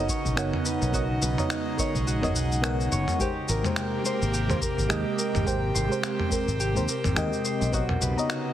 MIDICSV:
0, 0, Header, 1, 6, 480
1, 0, Start_track
1, 0, Key_signature, -4, "major"
1, 0, Tempo, 566038
1, 796, Time_signature, 4, 2, 24, 8
1, 7234, End_track
2, 0, Start_track
2, 0, Title_t, "FM electric piano"
2, 0, Program_c, 0, 5
2, 304, Note_on_c, 0, 59, 91
2, 312, Note_on_c, 0, 70, 80
2, 318, Note_on_c, 0, 73, 81
2, 327, Note_on_c, 0, 78, 99
2, 766, Note_off_c, 0, 59, 0
2, 770, Note_off_c, 0, 70, 0
2, 773, Note_off_c, 0, 73, 0
2, 778, Note_off_c, 0, 78, 0
2, 782, Note_on_c, 0, 59, 80
2, 791, Note_on_c, 0, 70, 78
2, 801, Note_on_c, 0, 73, 76
2, 806, Note_on_c, 0, 75, 95
2, 870, Note_off_c, 0, 59, 0
2, 875, Note_off_c, 0, 70, 0
2, 880, Note_off_c, 0, 73, 0
2, 882, Note_off_c, 0, 75, 0
2, 1166, Note_on_c, 0, 59, 79
2, 1172, Note_on_c, 0, 82, 71
2, 1180, Note_on_c, 0, 73, 75
2, 1185, Note_on_c, 0, 75, 88
2, 1488, Note_off_c, 0, 59, 0
2, 1490, Note_off_c, 0, 82, 0
2, 1494, Note_off_c, 0, 73, 0
2, 1497, Note_off_c, 0, 75, 0
2, 1502, Note_on_c, 0, 59, 83
2, 1507, Note_on_c, 0, 70, 79
2, 1515, Note_on_c, 0, 73, 74
2, 1525, Note_on_c, 0, 75, 98
2, 1639, Note_off_c, 0, 59, 0
2, 1642, Note_off_c, 0, 70, 0
2, 1645, Note_off_c, 0, 73, 0
2, 1650, Note_off_c, 0, 75, 0
2, 1875, Note_on_c, 0, 59, 88
2, 1881, Note_on_c, 0, 70, 81
2, 1892, Note_on_c, 0, 73, 80
2, 1899, Note_on_c, 0, 75, 97
2, 1945, Note_off_c, 0, 59, 0
2, 1947, Note_off_c, 0, 70, 0
2, 1953, Note_off_c, 0, 73, 0
2, 1956, Note_off_c, 0, 75, 0
2, 2219, Note_on_c, 0, 59, 93
2, 2229, Note_on_c, 0, 70, 85
2, 2235, Note_on_c, 0, 73, 79
2, 2242, Note_on_c, 0, 78, 101
2, 2683, Note_off_c, 0, 59, 0
2, 2689, Note_off_c, 0, 70, 0
2, 2691, Note_off_c, 0, 73, 0
2, 2695, Note_off_c, 0, 78, 0
2, 2705, Note_on_c, 0, 56, 85
2, 2712, Note_on_c, 0, 67, 80
2, 2721, Note_on_c, 0, 70, 82
2, 2727, Note_on_c, 0, 72, 93
2, 2792, Note_off_c, 0, 56, 0
2, 2795, Note_off_c, 0, 67, 0
2, 2800, Note_off_c, 0, 70, 0
2, 2803, Note_off_c, 0, 72, 0
2, 3081, Note_on_c, 0, 56, 82
2, 3088, Note_on_c, 0, 67, 75
2, 3095, Note_on_c, 0, 70, 69
2, 3104, Note_on_c, 0, 72, 90
2, 3405, Note_off_c, 0, 56, 0
2, 3408, Note_off_c, 0, 67, 0
2, 3412, Note_off_c, 0, 70, 0
2, 3416, Note_off_c, 0, 72, 0
2, 3422, Note_on_c, 0, 56, 82
2, 3431, Note_on_c, 0, 67, 77
2, 3438, Note_on_c, 0, 70, 76
2, 3445, Note_on_c, 0, 72, 92
2, 3559, Note_off_c, 0, 56, 0
2, 3564, Note_off_c, 0, 67, 0
2, 3567, Note_off_c, 0, 70, 0
2, 3571, Note_off_c, 0, 72, 0
2, 3797, Note_on_c, 0, 56, 86
2, 3806, Note_on_c, 0, 67, 79
2, 3813, Note_on_c, 0, 70, 77
2, 3819, Note_on_c, 0, 72, 98
2, 3865, Note_off_c, 0, 56, 0
2, 3870, Note_off_c, 0, 67, 0
2, 3873, Note_off_c, 0, 70, 0
2, 3877, Note_off_c, 0, 72, 0
2, 4138, Note_on_c, 0, 56, 92
2, 4146, Note_on_c, 0, 67, 88
2, 4155, Note_on_c, 0, 70, 82
2, 4160, Note_on_c, 0, 75, 102
2, 4603, Note_off_c, 0, 56, 0
2, 4607, Note_off_c, 0, 67, 0
2, 4611, Note_off_c, 0, 70, 0
2, 4614, Note_off_c, 0, 75, 0
2, 4616, Note_on_c, 0, 56, 84
2, 4626, Note_on_c, 0, 67, 83
2, 4635, Note_on_c, 0, 70, 81
2, 4641, Note_on_c, 0, 72, 96
2, 4707, Note_off_c, 0, 56, 0
2, 4712, Note_off_c, 0, 67, 0
2, 4717, Note_off_c, 0, 70, 0
2, 4720, Note_off_c, 0, 72, 0
2, 4993, Note_on_c, 0, 56, 83
2, 5001, Note_on_c, 0, 67, 76
2, 5010, Note_on_c, 0, 70, 75
2, 5018, Note_on_c, 0, 72, 92
2, 5321, Note_off_c, 0, 56, 0
2, 5325, Note_off_c, 0, 67, 0
2, 5330, Note_off_c, 0, 70, 0
2, 5333, Note_off_c, 0, 72, 0
2, 5338, Note_on_c, 0, 56, 88
2, 5343, Note_on_c, 0, 67, 75
2, 5354, Note_on_c, 0, 70, 75
2, 5360, Note_on_c, 0, 72, 89
2, 5477, Note_off_c, 0, 56, 0
2, 5479, Note_off_c, 0, 67, 0
2, 5485, Note_off_c, 0, 70, 0
2, 5488, Note_off_c, 0, 72, 0
2, 5717, Note_on_c, 0, 56, 87
2, 5727, Note_on_c, 0, 67, 80
2, 5735, Note_on_c, 0, 70, 84
2, 5740, Note_on_c, 0, 72, 100
2, 5786, Note_off_c, 0, 56, 0
2, 5790, Note_off_c, 0, 67, 0
2, 5794, Note_off_c, 0, 70, 0
2, 5797, Note_off_c, 0, 72, 0
2, 6060, Note_on_c, 0, 56, 92
2, 6069, Note_on_c, 0, 67, 82
2, 6077, Note_on_c, 0, 70, 82
2, 6085, Note_on_c, 0, 75, 100
2, 6524, Note_off_c, 0, 56, 0
2, 6528, Note_off_c, 0, 67, 0
2, 6532, Note_off_c, 0, 70, 0
2, 6537, Note_off_c, 0, 75, 0
2, 6546, Note_on_c, 0, 59, 86
2, 6553, Note_on_c, 0, 70, 81
2, 6559, Note_on_c, 0, 73, 82
2, 6567, Note_on_c, 0, 75, 92
2, 6633, Note_off_c, 0, 59, 0
2, 6636, Note_off_c, 0, 70, 0
2, 6639, Note_off_c, 0, 73, 0
2, 6643, Note_off_c, 0, 75, 0
2, 6924, Note_on_c, 0, 59, 81
2, 6934, Note_on_c, 0, 82, 78
2, 6938, Note_on_c, 0, 73, 73
2, 6946, Note_on_c, 0, 75, 92
2, 7234, Note_off_c, 0, 59, 0
2, 7234, Note_off_c, 0, 73, 0
2, 7234, Note_off_c, 0, 75, 0
2, 7234, Note_off_c, 0, 82, 0
2, 7234, End_track
3, 0, Start_track
3, 0, Title_t, "Harp"
3, 0, Program_c, 1, 46
3, 0, Note_on_c, 1, 66, 78
3, 0, Note_on_c, 1, 71, 71
3, 78, Note_on_c, 1, 73, 72
3, 312, Note_off_c, 1, 66, 0
3, 316, Note_on_c, 1, 66, 71
3, 551, Note_off_c, 1, 71, 0
3, 555, Note_on_c, 1, 71, 75
3, 789, Note_off_c, 1, 66, 0
3, 793, Note_on_c, 1, 66, 94
3, 1030, Note_off_c, 1, 71, 0
3, 1034, Note_on_c, 1, 71, 71
3, 1273, Note_off_c, 1, 66, 0
3, 1277, Note_on_c, 1, 66, 70
3, 1512, Note_off_c, 1, 73, 0
3, 1516, Note_on_c, 1, 73, 71
3, 1752, Note_off_c, 1, 66, 0
3, 1755, Note_on_c, 1, 66, 76
3, 1996, Note_on_c, 1, 78, 69
3, 2231, Note_off_c, 1, 66, 0
3, 2235, Note_on_c, 1, 66, 91
3, 2470, Note_off_c, 1, 73, 0
3, 2473, Note_on_c, 1, 73, 94
3, 2716, Note_on_c, 1, 67, 96
3, 2766, Note_off_c, 1, 66, 0
3, 2766, Note_off_c, 1, 78, 0
3, 2771, Note_off_c, 1, 71, 0
3, 2958, Note_on_c, 1, 70, 69
3, 3196, Note_on_c, 1, 79, 92
3, 3437, Note_on_c, 1, 72, 70
3, 3487, Note_off_c, 1, 73, 0
3, 3672, Note_off_c, 1, 67, 0
3, 3675, Note_on_c, 1, 67, 78
3, 3912, Note_off_c, 1, 70, 0
3, 3915, Note_on_c, 1, 70, 70
3, 4153, Note_off_c, 1, 67, 0
3, 4156, Note_on_c, 1, 67, 96
3, 4389, Note_off_c, 1, 70, 0
3, 4393, Note_on_c, 1, 70, 72
3, 4513, Note_off_c, 1, 79, 0
3, 4633, Note_on_c, 1, 79, 93
3, 4866, Note_off_c, 1, 72, 0
3, 4870, Note_on_c, 1, 72, 72
3, 5115, Note_off_c, 1, 67, 0
3, 5118, Note_on_c, 1, 67, 69
3, 5352, Note_off_c, 1, 70, 0
3, 5355, Note_on_c, 1, 70, 67
3, 5591, Note_off_c, 1, 67, 0
3, 5595, Note_on_c, 1, 67, 98
3, 5836, Note_off_c, 1, 70, 0
3, 5840, Note_on_c, 1, 70, 69
3, 5950, Note_off_c, 1, 79, 0
3, 6078, Note_on_c, 1, 79, 99
3, 6313, Note_off_c, 1, 72, 0
3, 6316, Note_on_c, 1, 72, 75
3, 6557, Note_on_c, 1, 66, 81
3, 6608, Note_off_c, 1, 67, 0
3, 6608, Note_off_c, 1, 79, 0
3, 6798, Note_on_c, 1, 71, 76
3, 6848, Note_off_c, 1, 70, 0
3, 6848, Note_off_c, 1, 72, 0
3, 7030, Note_off_c, 1, 66, 0
3, 7033, Note_on_c, 1, 66, 93
3, 7234, Note_off_c, 1, 66, 0
3, 7234, Note_off_c, 1, 71, 0
3, 7234, End_track
4, 0, Start_track
4, 0, Title_t, "Analog synth pad"
4, 0, Program_c, 2, 89
4, 0, Note_on_c, 2, 49, 81
4, 0, Note_on_c, 2, 63, 87
4, 796, Note_on_c, 2, 56, 72
4, 2683, Note_off_c, 2, 49, 0
4, 2683, Note_off_c, 2, 63, 0
4, 2697, Note_off_c, 2, 56, 0
4, 2712, Note_on_c, 2, 67, 88
4, 2713, Note_on_c, 2, 48, 79
4, 2715, Note_on_c, 2, 58, 69
4, 4616, Note_off_c, 2, 58, 0
4, 4632, Note_on_c, 2, 60, 71
4, 6520, Note_off_c, 2, 67, 0
4, 6521, Note_off_c, 2, 48, 0
4, 6535, Note_off_c, 2, 60, 0
4, 6547, Note_on_c, 2, 49, 79
4, 6556, Note_on_c, 2, 63, 90
4, 7234, Note_off_c, 2, 49, 0
4, 7234, Note_off_c, 2, 63, 0
4, 7234, End_track
5, 0, Start_track
5, 0, Title_t, "Fretless electric bass"
5, 0, Program_c, 3, 35
5, 214, Note_on_c, 3, 35, 76
5, 313, Note_off_c, 3, 35, 0
5, 313, Note_on_c, 3, 30, 85
5, 418, Note_off_c, 3, 30, 0
5, 693, Note_on_c, 3, 35, 86
5, 994, Note_off_c, 3, 35, 0
5, 1033, Note_on_c, 3, 35, 96
5, 1138, Note_off_c, 3, 35, 0
5, 1650, Note_on_c, 3, 35, 84
5, 1887, Note_off_c, 3, 35, 0
5, 1887, Note_on_c, 3, 30, 80
5, 1993, Note_off_c, 3, 30, 0
5, 1993, Note_on_c, 3, 35, 77
5, 2433, Note_off_c, 3, 35, 0
5, 2473, Note_on_c, 3, 30, 85
5, 2578, Note_off_c, 3, 30, 0
5, 2957, Note_on_c, 3, 32, 89
5, 3060, Note_off_c, 3, 32, 0
5, 3576, Note_on_c, 3, 32, 83
5, 3815, Note_on_c, 3, 39, 82
5, 3827, Note_off_c, 3, 32, 0
5, 3890, Note_off_c, 3, 39, 0
5, 4052, Note_on_c, 3, 32, 84
5, 4154, Note_on_c, 3, 39, 93
5, 4166, Note_off_c, 3, 32, 0
5, 4258, Note_off_c, 3, 39, 0
5, 4534, Note_on_c, 3, 32, 89
5, 4834, Note_off_c, 3, 32, 0
5, 4875, Note_on_c, 3, 32, 98
5, 4979, Note_off_c, 3, 32, 0
5, 5490, Note_on_c, 3, 32, 88
5, 5731, Note_on_c, 3, 39, 87
5, 5744, Note_off_c, 3, 32, 0
5, 5808, Note_off_c, 3, 39, 0
5, 5972, Note_on_c, 3, 32, 78
5, 6074, Note_on_c, 3, 39, 93
5, 6087, Note_off_c, 3, 32, 0
5, 6179, Note_off_c, 3, 39, 0
5, 6454, Note_on_c, 3, 35, 87
5, 6754, Note_off_c, 3, 35, 0
5, 6793, Note_on_c, 3, 35, 94
5, 6898, Note_off_c, 3, 35, 0
5, 7234, End_track
6, 0, Start_track
6, 0, Title_t, "Drums"
6, 73, Note_on_c, 9, 36, 108
6, 76, Note_on_c, 9, 69, 74
6, 158, Note_off_c, 9, 36, 0
6, 161, Note_off_c, 9, 69, 0
6, 213, Note_on_c, 9, 36, 104
6, 218, Note_on_c, 9, 69, 34
6, 298, Note_off_c, 9, 36, 0
6, 303, Note_off_c, 9, 69, 0
6, 316, Note_on_c, 9, 26, 90
6, 320, Note_on_c, 9, 69, 43
6, 401, Note_off_c, 9, 26, 0
6, 405, Note_off_c, 9, 69, 0
6, 453, Note_on_c, 9, 45, 68
6, 538, Note_off_c, 9, 45, 0
6, 555, Note_on_c, 9, 69, 76
6, 640, Note_off_c, 9, 69, 0
6, 694, Note_on_c, 9, 69, 32
6, 779, Note_off_c, 9, 69, 0
6, 792, Note_on_c, 9, 36, 107
6, 796, Note_on_c, 9, 69, 44
6, 877, Note_off_c, 9, 36, 0
6, 881, Note_off_c, 9, 69, 0
6, 1036, Note_on_c, 9, 69, 78
6, 1121, Note_off_c, 9, 69, 0
6, 1172, Note_on_c, 9, 45, 73
6, 1176, Note_on_c, 9, 69, 32
6, 1257, Note_off_c, 9, 45, 0
6, 1261, Note_off_c, 9, 69, 0
6, 1273, Note_on_c, 9, 26, 95
6, 1277, Note_on_c, 9, 69, 43
6, 1358, Note_off_c, 9, 26, 0
6, 1362, Note_off_c, 9, 69, 0
6, 1513, Note_on_c, 9, 36, 103
6, 1516, Note_on_c, 9, 69, 76
6, 1597, Note_off_c, 9, 36, 0
6, 1601, Note_off_c, 9, 69, 0
6, 1650, Note_on_c, 9, 36, 60
6, 1656, Note_on_c, 9, 69, 34
6, 1735, Note_off_c, 9, 36, 0
6, 1741, Note_off_c, 9, 69, 0
6, 1759, Note_on_c, 9, 69, 47
6, 1844, Note_off_c, 9, 69, 0
6, 1893, Note_on_c, 9, 45, 68
6, 1897, Note_on_c, 9, 69, 29
6, 1978, Note_off_c, 9, 45, 0
6, 1982, Note_off_c, 9, 69, 0
6, 1997, Note_on_c, 9, 69, 72
6, 2082, Note_off_c, 9, 69, 0
6, 2136, Note_on_c, 9, 69, 35
6, 2220, Note_off_c, 9, 69, 0
6, 2236, Note_on_c, 9, 26, 93
6, 2240, Note_on_c, 9, 69, 43
6, 2321, Note_off_c, 9, 26, 0
6, 2325, Note_off_c, 9, 69, 0
6, 2378, Note_on_c, 9, 69, 29
6, 2463, Note_off_c, 9, 69, 0
6, 2477, Note_on_c, 9, 69, 72
6, 2562, Note_off_c, 9, 69, 0
6, 2610, Note_on_c, 9, 45, 73
6, 2614, Note_on_c, 9, 69, 34
6, 2695, Note_off_c, 9, 45, 0
6, 2699, Note_off_c, 9, 69, 0
6, 2713, Note_on_c, 9, 36, 111
6, 2715, Note_on_c, 9, 69, 43
6, 2798, Note_off_c, 9, 36, 0
6, 2800, Note_off_c, 9, 69, 0
6, 2955, Note_on_c, 9, 69, 70
6, 3040, Note_off_c, 9, 69, 0
6, 3091, Note_on_c, 9, 45, 72
6, 3095, Note_on_c, 9, 69, 29
6, 3175, Note_off_c, 9, 45, 0
6, 3179, Note_off_c, 9, 69, 0
6, 3191, Note_on_c, 9, 26, 88
6, 3195, Note_on_c, 9, 69, 40
6, 3276, Note_off_c, 9, 26, 0
6, 3280, Note_off_c, 9, 69, 0
6, 3437, Note_on_c, 9, 69, 70
6, 3521, Note_off_c, 9, 69, 0
6, 3579, Note_on_c, 9, 69, 33
6, 3663, Note_off_c, 9, 69, 0
6, 3679, Note_on_c, 9, 69, 45
6, 3764, Note_off_c, 9, 69, 0
6, 3812, Note_on_c, 9, 45, 79
6, 3816, Note_on_c, 9, 69, 27
6, 3897, Note_off_c, 9, 45, 0
6, 3901, Note_off_c, 9, 69, 0
6, 3913, Note_on_c, 9, 36, 101
6, 3919, Note_on_c, 9, 69, 69
6, 3998, Note_off_c, 9, 36, 0
6, 4003, Note_off_c, 9, 69, 0
6, 4052, Note_on_c, 9, 36, 104
6, 4059, Note_on_c, 9, 69, 35
6, 4137, Note_off_c, 9, 36, 0
6, 4143, Note_off_c, 9, 69, 0
6, 4155, Note_on_c, 9, 26, 84
6, 4159, Note_on_c, 9, 69, 42
6, 4239, Note_off_c, 9, 26, 0
6, 4243, Note_off_c, 9, 69, 0
6, 4399, Note_on_c, 9, 69, 75
6, 4484, Note_off_c, 9, 69, 0
6, 4535, Note_on_c, 9, 45, 76
6, 4539, Note_on_c, 9, 69, 31
6, 4620, Note_off_c, 9, 45, 0
6, 4624, Note_off_c, 9, 69, 0
6, 4633, Note_on_c, 9, 36, 106
6, 4639, Note_on_c, 9, 69, 42
6, 4718, Note_off_c, 9, 36, 0
6, 4724, Note_off_c, 9, 69, 0
6, 4882, Note_on_c, 9, 69, 74
6, 4966, Note_off_c, 9, 69, 0
6, 5020, Note_on_c, 9, 69, 30
6, 5105, Note_off_c, 9, 69, 0
6, 5117, Note_on_c, 9, 26, 93
6, 5121, Note_on_c, 9, 69, 43
6, 5202, Note_off_c, 9, 26, 0
6, 5206, Note_off_c, 9, 69, 0
6, 5253, Note_on_c, 9, 45, 69
6, 5338, Note_off_c, 9, 45, 0
6, 5353, Note_on_c, 9, 36, 89
6, 5355, Note_on_c, 9, 69, 64
6, 5437, Note_off_c, 9, 36, 0
6, 5440, Note_off_c, 9, 69, 0
6, 5492, Note_on_c, 9, 36, 55
6, 5497, Note_on_c, 9, 69, 29
6, 5577, Note_off_c, 9, 36, 0
6, 5582, Note_off_c, 9, 69, 0
6, 5598, Note_on_c, 9, 69, 43
6, 5682, Note_off_c, 9, 69, 0
6, 5736, Note_on_c, 9, 69, 28
6, 5821, Note_off_c, 9, 69, 0
6, 5837, Note_on_c, 9, 69, 72
6, 5922, Note_off_c, 9, 69, 0
6, 5972, Note_on_c, 9, 45, 82
6, 5976, Note_on_c, 9, 69, 33
6, 6057, Note_off_c, 9, 45, 0
6, 6061, Note_off_c, 9, 69, 0
6, 6075, Note_on_c, 9, 26, 85
6, 6079, Note_on_c, 9, 69, 40
6, 6160, Note_off_c, 9, 26, 0
6, 6164, Note_off_c, 9, 69, 0
6, 6215, Note_on_c, 9, 69, 28
6, 6300, Note_off_c, 9, 69, 0
6, 6317, Note_on_c, 9, 69, 68
6, 6402, Note_off_c, 9, 69, 0
6, 6457, Note_on_c, 9, 69, 32
6, 6542, Note_off_c, 9, 69, 0
6, 6554, Note_on_c, 9, 36, 100
6, 6556, Note_on_c, 9, 69, 43
6, 6639, Note_off_c, 9, 36, 0
6, 6641, Note_off_c, 9, 69, 0
6, 6691, Note_on_c, 9, 45, 81
6, 6776, Note_off_c, 9, 45, 0
6, 6797, Note_on_c, 9, 69, 73
6, 6882, Note_off_c, 9, 69, 0
6, 6939, Note_on_c, 9, 69, 29
6, 7023, Note_off_c, 9, 69, 0
6, 7036, Note_on_c, 9, 26, 91
6, 7040, Note_on_c, 9, 69, 42
6, 7121, Note_off_c, 9, 26, 0
6, 7125, Note_off_c, 9, 69, 0
6, 7234, End_track
0, 0, End_of_file